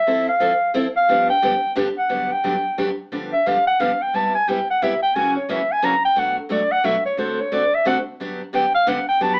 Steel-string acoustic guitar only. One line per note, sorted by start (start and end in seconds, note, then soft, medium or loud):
0.07 0.27 F3 medium
0.07 0.28 C4 medium
0.07 0.28 E4 medium
0.07 0.28 A4 medium
0.40 0.51 F3 medium
0.40 0.51 C4 medium
0.40 0.52 E4 medium
0.40 0.52 A4 loud
0.74 0.85 F3 medium
0.74 0.85 C4 loud
0.74 0.86 E4 loud
0.74 0.86 A4 loud
1.08 1.29 G2 medium
1.08 1.29 D3 medium
1.08 1.29 F3 medium
1.08 1.29 B3 medium
1.08 1.29 D4 medium
1.08 1.29 G4 medium
1.42 1.53 G2 medium
1.42 1.53 D3 medium
1.42 1.53 F3 medium
1.42 1.53 B3 medium
1.42 1.53 D4 medium
1.42 1.54 G4 loud
1.75 1.87 G2 loud
1.75 1.87 D3 loud
1.75 1.87 F3 loud
1.75 1.87 B3 loud
1.75 1.87 D4 loud
1.75 1.87 G4 loud
2.09 2.30 G2 medium
2.09 2.30 D3 medium
2.09 2.30 F#3 medium
2.09 2.30 B3 medium
2.09 2.30 D4 medium
2.09 2.30 G4 medium
2.44 2.55 G2 medium
2.44 2.55 D3 medium
2.44 2.55 F#3 medium
2.44 2.55 B3 medium
2.44 2.55 D4 medium
2.44 2.55 G4 medium
2.78 2.89 G2 medium
2.78 2.89 D3 medium
2.78 2.89 F#3 medium
2.78 2.89 B3 medium
2.78 2.89 D4 medium
2.78 2.89 G4 loud
3.12 3.32 G2 medium
3.12 3.32 D3 medium
3.12 3.32 F3 medium
3.12 3.32 B3 medium
3.12 3.33 D4 medium
3.12 3.33 G4 medium
3.46 3.57 G2 medium
3.46 3.57 D3 medium
3.46 3.57 F3 medium
3.46 3.57 B3 medium
3.46 3.57 D4 medium
3.46 3.57 G4 medium
3.79 3.90 G2 medium
3.79 3.90 D3 medium
3.79 3.91 F3 medium
3.79 3.91 B3 medium
3.79 3.91 D4 medium
3.79 3.91 G4 medium
4.14 4.34 C3 medium
4.14 4.34 G3 medium
4.14 4.34 B3 medium
4.14 4.34 E4 medium
4.14 4.35 G4 medium
4.48 4.58 C3 medium
4.48 4.58 G3 medium
4.48 4.59 B3 medium
4.48 4.59 E4 medium
4.48 4.59 G4 medium
4.82 4.92 C3 medium
4.82 4.92 G3 medium
4.82 4.92 B3 medium
4.82 4.93 E4 medium
4.82 4.93 G4 medium
5.15 5.36 F#2 medium
5.15 5.36 C#3 medium
5.15 5.36 E3 medium
5.15 5.36 A#3 medium
5.15 5.36 C#4 medium
5.15 5.36 F#4 medium
5.49 5.59 F#2 medium
5.49 5.60 C#3 medium
5.49 5.60 E3 medium
5.49 5.60 A#3 medium
5.49 5.60 C#4 medium
5.49 5.60 F#4 medium
5.82 5.93 F#2 medium
5.82 5.93 C#3 loud
5.82 5.94 E3 medium
5.82 5.94 A#3 loud
5.82 5.94 C#4 medium
5.82 5.94 F#4 loud
6.16 6.37 B2 medium
6.16 6.37 F#3 medium
6.16 6.37 A3 medium
6.16 6.37 D4 medium
6.16 6.37 F#4 medium
6.49 6.61 B2 medium
6.49 6.61 F#3 medium
6.49 6.61 A3 medium
6.49 6.61 D4 medium
6.49 6.61 F#4 medium
6.84 6.95 B2 medium
6.84 6.95 F#3 medium
6.84 6.95 A3 loud
6.84 6.95 D4 medium
6.84 6.95 F#4 loud
7.17 7.38 D3 medium
7.17 7.39 A3 medium
7.17 7.39 C4 medium
7.17 7.39 F#4 medium
7.17 7.39 A4 medium
7.52 7.63 D3 medium
7.52 7.63 A3 medium
7.52 7.63 C4 medium
7.52 7.63 F#4 medium
7.52 7.63 A4 medium
7.85 7.96 D3 loud
7.85 7.96 A3 loud
7.85 7.97 C4 loud
7.85 7.97 F#4 loud
7.85 7.97 A4 loud
8.20 8.40 G2 medium
8.20 8.40 D3 medium
8.20 8.40 F#3 medium
8.20 8.41 B3 medium
8.20 8.41 D4 medium
8.20 8.41 G4 medium
8.53 8.64 G2 medium
8.53 8.64 D3 medium
8.53 8.64 F#3 medium
8.53 8.64 B3 medium
8.53 8.64 D4 medium
8.53 8.65 G4 medium
8.87 8.98 G2 loud
8.87 8.98 D3 loud
8.87 8.98 F#3 loud
8.87 8.98 B3 loud
8.87 8.98 D4 loud
8.87 8.98 G4 loud
9.20 9.40 G2 medium
9.20 9.40 D3 medium
9.20 9.40 F#3 medium
9.20 9.40 B3 medium
9.20 9.40 D4 medium
9.20 9.40 G4 medium